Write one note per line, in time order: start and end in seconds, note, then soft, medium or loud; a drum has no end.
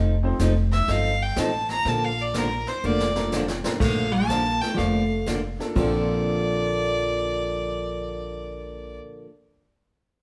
0.00 0.30 F1 medium
0.00 0.13 F3 medium
0.00 0.14 C4 medium
0.00 0.14 D#4 medium
0.00 0.14 A4 medium
0.23 0.38 C4 medium
0.23 0.38 D#4 medium
0.23 0.38 F4 medium
0.23 0.39 A4 medium
0.23 0.39 C5 medium
0.39 0.81 F1 medium
0.39 0.52 F3 medium
0.39 0.52 C4 medium
0.39 0.52 D#4 medium
0.39 0.52 A4 medium
0.39 kick soft
0.39 snare medium
0.39 hi-hat pedal soft
0.72 0.92 E5 medium
0.72 snare soft
0.88 1.30 G1 medium
0.88 1.11 F3 medium
0.88 1.11 C4 medium
0.88 1.11 D#4 medium
0.88 1.11 A4 medium
0.88 1.24 F5 loud
0.88 brush sweep medium
0.88 kick soft
0.88 snare medium
1.22 1.41 G5 medium
1.36 1.78 A1 medium
1.36 1.49 F3 medium
1.36 1.50 C4 medium
1.36 1.50 D#4 medium
1.36 1.50 A4 loud
1.36 1.70 A5 medium
1.36 kick soft
1.36 snare medium
1.36 hi-hat pedal medium
1.69 1.90 A#5 loud
1.69 snare soft
1.85 2.64 A#1 medium
1.85 2.09 D3 medium
1.85 2.09 F3 medium
1.85 2.09 A#3 medium
1.85 2.09 D4 medium
1.85 2.09 A4 medium
1.85 2.06 A5 medium
1.85 brush sweep soft
1.85 kick soft
1.85 snare medium
2.04 2.23 F5 loud
2.21 2.40 D5 medium
2.34 2.47 D3 medium
2.34 2.47 F3 medium
2.34 2.47 A#3 medium
2.34 2.47 D4 medium
2.34 2.47 A4 medium
2.34 kick soft
2.34 snare medium
2.34 hi-hat pedal medium
2.38 2.70 A#4 medium
2.67 2.87 C5 medium
2.67 snare soft
2.84 3.62 F1 medium
2.84 3.06 D3 medium
2.84 3.06 F3 medium
2.84 3.07 A#3 medium
2.84 3.07 D4 medium
2.84 3.07 A4 medium
2.84 3.34 D5 loud
2.99 snare medium
3.15 3.30 A#3 medium
3.15 3.31 D4 medium
3.15 3.31 F4 medium
3.15 3.31 A4 medium
3.15 3.31 A#4 medium
3.15 snare medium
3.32 3.44 D3 medium
3.32 3.45 F3 medium
3.32 3.45 A#3 medium
3.32 3.45 D4 medium
3.32 3.45 A4 medium
3.32 snare medium
3.32 hi-hat pedal medium
3.48 snare medium
3.64 3.79 A#3 medium
3.64 3.79 D4 medium
3.64 3.79 F4 medium
3.64 3.80 A4 medium
3.64 3.80 A#4 medium
3.64 snare medium
3.80 4.59 A#1 medium
3.80 4.04 D3 medium
3.80 4.04 F3 medium
3.80 4.12 A3 medium
3.80 4.04 A#3 medium
3.80 4.04 D4 medium
3.80 4.05 A4 medium
3.80 4.14 F5 medium
3.80 brush sweep soft
3.80 kick medium
3.80 snare soft
3.80 crash medium
4.12 4.62 A#3 medium
4.12 4.63 A5 loud
4.29 4.42 D3 medium
4.29 4.42 F3 medium
4.29 4.42 A#3 medium
4.29 4.42 D4 medium
4.29 4.42 A4 medium
4.29 kick soft
4.29 snare medium
4.29 hi-hat pedal soft
4.61 4.74 A3 medium
4.61 4.76 G5 medium
4.61 snare soft
4.74 5.01 D3 medium
4.74 4.79 F3 soft
4.74 5.27 A3 medium
4.74 4.79 D5 medium
4.74 5.27 F5 medium
4.74 kick soft
4.79 5.57 F1 medium
4.79 5.01 F3 medium
4.79 5.02 A#3 medium
4.79 5.02 D4 medium
4.79 5.02 A4 medium
4.79 brush sweep soft
4.79 snare soft
5.26 5.39 D3 medium
5.26 5.39 F3 medium
5.26 5.40 A#3 medium
5.26 5.39 D4 medium
5.26 5.40 A4 medium
5.26 kick soft
5.26 snare medium
5.26 hi-hat pedal medium
5.59 5.74 A#3 medium
5.59 5.75 D4 medium
5.59 5.75 F4 medium
5.59 5.75 A4 medium
5.59 snare soft
5.75 8.98 A#1 medium
5.75 9.00 A#2 medium
5.75 9.25 A#2 medium
5.75 9.27 D3 medium
5.75 8.98 F3 medium
5.75 9.27 F3 medium
5.75 9.01 A#3 medium
5.75 9.28 A#3 medium
5.75 9.02 C4 medium
5.75 9.02 D4 medium
5.75 9.03 A4 medium
5.75 8.98 D5 medium
5.75 kick medium
5.75 crash medium
5.79 9.29 D4 medium
5.79 9.29 A4 medium